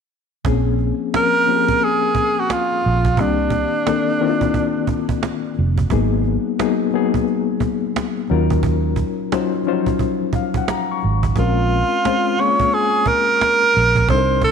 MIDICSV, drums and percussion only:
0, 0, Header, 1, 2, 480
1, 0, Start_track
1, 0, Tempo, 681818
1, 315, Time_signature, 4, 2, 24, 8
1, 10219, End_track
2, 0, Start_track
2, 0, Title_t, "Cajon"
2, 316, Note_on_c, 9, 36, 100
2, 386, Note_off_c, 9, 36, 0
2, 554, Note_on_c, 9, 38, 35
2, 625, Note_off_c, 9, 38, 0
2, 803, Note_on_c, 9, 38, 108
2, 873, Note_off_c, 9, 38, 0
2, 1022, Note_on_c, 9, 38, 33
2, 1092, Note_off_c, 9, 38, 0
2, 1186, Note_on_c, 9, 36, 79
2, 1257, Note_off_c, 9, 36, 0
2, 1275, Note_on_c, 9, 38, 44
2, 1345, Note_off_c, 9, 38, 0
2, 1511, Note_on_c, 9, 36, 80
2, 1581, Note_off_c, 9, 36, 0
2, 1655, Note_on_c, 9, 38, 17
2, 1726, Note_off_c, 9, 38, 0
2, 1759, Note_on_c, 9, 38, 94
2, 1830, Note_off_c, 9, 38, 0
2, 1911, Note_on_c, 9, 38, 29
2, 1982, Note_off_c, 9, 38, 0
2, 1982, Note_on_c, 9, 38, 37
2, 2053, Note_off_c, 9, 38, 0
2, 2145, Note_on_c, 9, 36, 85
2, 2215, Note_off_c, 9, 36, 0
2, 2233, Note_on_c, 9, 36, 103
2, 2304, Note_off_c, 9, 36, 0
2, 2467, Note_on_c, 9, 36, 87
2, 2537, Note_off_c, 9, 36, 0
2, 2722, Note_on_c, 9, 38, 99
2, 2792, Note_off_c, 9, 38, 0
2, 2941, Note_on_c, 9, 38, 32
2, 3012, Note_off_c, 9, 38, 0
2, 3105, Note_on_c, 9, 36, 80
2, 3175, Note_off_c, 9, 36, 0
2, 3197, Note_on_c, 9, 36, 85
2, 3267, Note_off_c, 9, 36, 0
2, 3431, Note_on_c, 9, 36, 83
2, 3501, Note_off_c, 9, 36, 0
2, 3582, Note_on_c, 9, 36, 85
2, 3653, Note_off_c, 9, 36, 0
2, 3680, Note_on_c, 9, 38, 94
2, 3750, Note_off_c, 9, 38, 0
2, 3833, Note_on_c, 9, 38, 34
2, 3901, Note_off_c, 9, 38, 0
2, 3901, Note_on_c, 9, 38, 35
2, 3971, Note_off_c, 9, 38, 0
2, 4066, Note_on_c, 9, 36, 84
2, 4137, Note_off_c, 9, 36, 0
2, 4154, Note_on_c, 9, 36, 100
2, 4225, Note_off_c, 9, 36, 0
2, 4395, Note_on_c, 9, 38, 34
2, 4465, Note_off_c, 9, 38, 0
2, 4643, Note_on_c, 9, 38, 97
2, 4713, Note_off_c, 9, 38, 0
2, 4862, Note_on_c, 9, 38, 32
2, 4932, Note_off_c, 9, 38, 0
2, 5027, Note_on_c, 9, 36, 81
2, 5098, Note_off_c, 9, 36, 0
2, 5115, Note_on_c, 9, 38, 42
2, 5186, Note_off_c, 9, 38, 0
2, 5353, Note_on_c, 9, 36, 85
2, 5424, Note_off_c, 9, 36, 0
2, 5500, Note_on_c, 9, 38, 19
2, 5570, Note_off_c, 9, 38, 0
2, 5606, Note_on_c, 9, 38, 98
2, 5676, Note_off_c, 9, 38, 0
2, 5757, Note_on_c, 9, 38, 29
2, 5826, Note_off_c, 9, 38, 0
2, 5826, Note_on_c, 9, 38, 33
2, 5897, Note_off_c, 9, 38, 0
2, 5987, Note_on_c, 9, 36, 85
2, 6057, Note_off_c, 9, 36, 0
2, 6075, Note_on_c, 9, 36, 100
2, 6145, Note_off_c, 9, 36, 0
2, 6308, Note_on_c, 9, 36, 79
2, 6379, Note_off_c, 9, 36, 0
2, 6459, Note_on_c, 9, 38, 17
2, 6530, Note_off_c, 9, 38, 0
2, 6563, Note_on_c, 9, 38, 93
2, 6633, Note_off_c, 9, 38, 0
2, 6717, Note_on_c, 9, 38, 34
2, 6780, Note_off_c, 9, 38, 0
2, 6780, Note_on_c, 9, 38, 35
2, 6851, Note_off_c, 9, 38, 0
2, 6945, Note_on_c, 9, 36, 81
2, 7015, Note_off_c, 9, 36, 0
2, 7035, Note_on_c, 9, 36, 84
2, 7106, Note_off_c, 9, 36, 0
2, 7270, Note_on_c, 9, 36, 88
2, 7341, Note_off_c, 9, 36, 0
2, 7422, Note_on_c, 9, 36, 84
2, 7492, Note_off_c, 9, 36, 0
2, 7519, Note_on_c, 9, 38, 102
2, 7590, Note_off_c, 9, 38, 0
2, 7743, Note_on_c, 9, 38, 33
2, 7764, Note_off_c, 9, 38, 0
2, 7764, Note_on_c, 9, 38, 32
2, 7835, Note_off_c, 9, 38, 0
2, 7906, Note_on_c, 9, 36, 84
2, 7977, Note_off_c, 9, 36, 0
2, 7995, Note_on_c, 9, 36, 99
2, 8065, Note_off_c, 9, 36, 0
2, 8233, Note_on_c, 9, 38, 36
2, 8303, Note_off_c, 9, 38, 0
2, 8485, Note_on_c, 9, 38, 102
2, 8555, Note_off_c, 9, 38, 0
2, 8704, Note_on_c, 9, 38, 33
2, 8775, Note_off_c, 9, 38, 0
2, 8868, Note_on_c, 9, 36, 78
2, 8938, Note_off_c, 9, 36, 0
2, 8957, Note_on_c, 9, 38, 44
2, 9027, Note_off_c, 9, 38, 0
2, 9193, Note_on_c, 9, 36, 89
2, 9263, Note_off_c, 9, 36, 0
2, 9340, Note_on_c, 9, 38, 17
2, 9410, Note_off_c, 9, 38, 0
2, 9444, Note_on_c, 9, 38, 92
2, 9514, Note_off_c, 9, 38, 0
2, 9599, Note_on_c, 9, 38, 30
2, 9666, Note_off_c, 9, 38, 0
2, 9666, Note_on_c, 9, 38, 35
2, 9736, Note_off_c, 9, 38, 0
2, 9827, Note_on_c, 9, 36, 81
2, 9898, Note_off_c, 9, 36, 0
2, 9916, Note_on_c, 9, 36, 106
2, 9987, Note_off_c, 9, 36, 0
2, 10149, Note_on_c, 9, 36, 84
2, 10219, Note_off_c, 9, 36, 0
2, 10219, End_track
0, 0, End_of_file